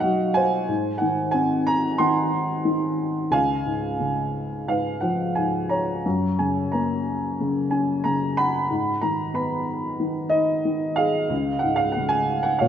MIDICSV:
0, 0, Header, 1, 2, 480
1, 0, Start_track
1, 0, Tempo, 656455
1, 494, Time_signature, 4, 2, 24, 8
1, 2421, Tempo, 684151
1, 4341, Tempo, 669643
1, 5781, Tempo, 650759
1, 9192, End_track
2, 0, Start_track
2, 0, Title_t, "Upright piano"
2, 0, Program_c, 0, 0
2, 0, Control_c, 0, 64, 127
2, 0, Note_on_c, 0, 47, 53
2, 0, Note_on_c, 0, 54, 45
2, 0, Note_on_c, 0, 63, 47
2, 0, Note_on_c, 0, 66, 48
2, 0, Note_on_c, 0, 75, 69
2, 0, Note_on_c, 0, 77, 70
2, 0, Note_on_c, 0, 78, 82
2, 2, Note_off_c, 0, 78, 0
2, 2, Note_on_c, 0, 78, 77
2, 25, Note_off_c, 0, 54, 0
2, 25, Note_on_c, 0, 54, 49
2, 230, Note_off_c, 0, 78, 0
2, 250, Note_on_c, 0, 80, 88
2, 264, Note_on_c, 0, 72, 56
2, 466, Note_off_c, 0, 47, 0
2, 468, Note_off_c, 0, 66, 0
2, 474, Note_off_c, 0, 63, 0
2, 481, Note_off_c, 0, 54, 0
2, 499, Note_on_c, 0, 44, 54
2, 503, Control_c, 0, 64, 0
2, 505, Note_off_c, 0, 77, 0
2, 508, Note_off_c, 0, 75, 0
2, 646, Control_c, 0, 64, 127
2, 716, Note_on_c, 0, 78, 72
2, 742, Note_off_c, 0, 80, 0
2, 742, Note_on_c, 0, 51, 46
2, 961, Note_on_c, 0, 80, 79
2, 972, Note_off_c, 0, 78, 0
2, 980, Note_on_c, 0, 60, 53
2, 1189, Note_off_c, 0, 72, 0
2, 1216, Note_off_c, 0, 80, 0
2, 1218, Note_on_c, 0, 82, 90
2, 1448, Note_off_c, 0, 51, 0
2, 1450, Note_on_c, 0, 84, 83
2, 1459, Note_on_c, 0, 51, 50
2, 1464, Note_off_c, 0, 82, 0
2, 1464, Note_on_c, 0, 78, 64
2, 1693, Note_on_c, 0, 63, 48
2, 1911, Note_off_c, 0, 60, 0
2, 1926, Note_off_c, 0, 51, 0
2, 1937, Note_on_c, 0, 51, 47
2, 2395, Note_off_c, 0, 44, 0
2, 2397, Note_off_c, 0, 78, 0
2, 2399, Note_off_c, 0, 63, 0
2, 2408, Note_off_c, 0, 51, 0
2, 2419, Note_on_c, 0, 37, 54
2, 2425, Note_on_c, 0, 80, 88
2, 2432, Control_c, 0, 64, 0
2, 2435, Note_on_c, 0, 77, 65
2, 2447, Note_off_c, 0, 84, 0
2, 2564, Control_c, 0, 64, 127
2, 2666, Note_on_c, 0, 44, 42
2, 2903, Note_on_c, 0, 49, 43
2, 3353, Note_off_c, 0, 77, 0
2, 3370, Note_off_c, 0, 44, 0
2, 3380, Note_on_c, 0, 44, 43
2, 3384, Note_on_c, 0, 77, 68
2, 3391, Note_on_c, 0, 71, 46
2, 3405, Note_off_c, 0, 80, 0
2, 3610, Note_on_c, 0, 78, 66
2, 3622, Note_on_c, 0, 53, 44
2, 3630, Note_off_c, 0, 77, 0
2, 3837, Note_off_c, 0, 49, 0
2, 3854, Note_on_c, 0, 80, 67
2, 3857, Note_off_c, 0, 44, 0
2, 3864, Note_off_c, 0, 78, 0
2, 3868, Note_on_c, 0, 44, 43
2, 4093, Note_on_c, 0, 82, 70
2, 4100, Note_on_c, 0, 73, 50
2, 4106, Note_off_c, 0, 80, 0
2, 4312, Note_off_c, 0, 37, 0
2, 4321, Note_off_c, 0, 71, 0
2, 4322, Note_off_c, 0, 53, 0
2, 4330, Note_off_c, 0, 44, 0
2, 4347, Note_on_c, 0, 42, 51
2, 4352, Control_c, 0, 64, 0
2, 4479, Control_c, 0, 64, 127
2, 4586, Note_on_c, 0, 80, 60
2, 4588, Note_on_c, 0, 49, 37
2, 4594, Note_off_c, 0, 82, 0
2, 4809, Note_off_c, 0, 80, 0
2, 4821, Note_on_c, 0, 82, 59
2, 4833, Note_on_c, 0, 58, 47
2, 5035, Note_off_c, 0, 73, 0
2, 5046, Note_off_c, 0, 82, 0
2, 5303, Note_off_c, 0, 49, 0
2, 5313, Note_on_c, 0, 49, 46
2, 5531, Note_on_c, 0, 80, 66
2, 5538, Note_on_c, 0, 61, 40
2, 5756, Note_off_c, 0, 58, 0
2, 5768, Note_off_c, 0, 49, 0
2, 5768, Note_on_c, 0, 82, 77
2, 5779, Note_on_c, 0, 49, 45
2, 5782, Note_off_c, 0, 80, 0
2, 6014, Note_on_c, 0, 83, 86
2, 6016, Note_on_c, 0, 78, 64
2, 6025, Note_off_c, 0, 82, 0
2, 6238, Note_off_c, 0, 42, 0
2, 6241, Note_off_c, 0, 61, 0
2, 6250, Note_off_c, 0, 49, 0
2, 6258, Note_on_c, 0, 44, 53
2, 6273, Control_c, 0, 64, 0
2, 6402, Control_c, 0, 64, 127
2, 6469, Note_off_c, 0, 83, 0
2, 6488, Note_on_c, 0, 82, 75
2, 6495, Note_on_c, 0, 51, 39
2, 6725, Note_on_c, 0, 59, 49
2, 6733, Note_on_c, 0, 83, 62
2, 6739, Note_off_c, 0, 82, 0
2, 6942, Note_off_c, 0, 78, 0
2, 6955, Note_off_c, 0, 83, 0
2, 7201, Note_off_c, 0, 51, 0
2, 7213, Note_on_c, 0, 51, 47
2, 7432, Note_on_c, 0, 75, 87
2, 7452, Note_on_c, 0, 63, 45
2, 7657, Note_off_c, 0, 59, 0
2, 7684, Note_off_c, 0, 51, 0
2, 7695, Note_on_c, 0, 51, 48
2, 7922, Note_on_c, 0, 77, 83
2, 7937, Note_on_c, 0, 68, 57
2, 7940, Note_off_c, 0, 75, 0
2, 8142, Note_off_c, 0, 44, 0
2, 8153, Note_off_c, 0, 63, 0
2, 8161, Note_off_c, 0, 51, 0
2, 8171, Note_on_c, 0, 37, 60
2, 8185, Control_c, 0, 64, 0
2, 8308, Control_c, 0, 64, 127
2, 8388, Note_on_c, 0, 78, 76
2, 8420, Note_on_c, 0, 44, 46
2, 8423, Note_off_c, 0, 77, 0
2, 8512, Note_on_c, 0, 77, 83
2, 8525, Note_off_c, 0, 78, 0
2, 8631, Note_on_c, 0, 78, 72
2, 8648, Note_off_c, 0, 77, 0
2, 8667, Note_on_c, 0, 49, 51
2, 8754, Note_on_c, 0, 80, 86
2, 8768, Note_off_c, 0, 78, 0
2, 8868, Note_off_c, 0, 68, 0
2, 9006, Note_on_c, 0, 78, 83
2, 9014, Note_off_c, 0, 80, 0
2, 9108, Note_off_c, 0, 37, 0
2, 9120, Note_off_c, 0, 44, 0
2, 9122, Note_on_c, 0, 77, 76
2, 9124, Note_off_c, 0, 78, 0
2, 9130, Note_off_c, 0, 49, 0
2, 9138, Note_on_c, 0, 73, 57
2, 9143, Note_on_c, 0, 46, 58
2, 9148, Control_c, 0, 64, 0
2, 9192, Note_off_c, 0, 46, 0
2, 9192, Note_off_c, 0, 73, 0
2, 9192, Note_off_c, 0, 77, 0
2, 9192, End_track
0, 0, End_of_file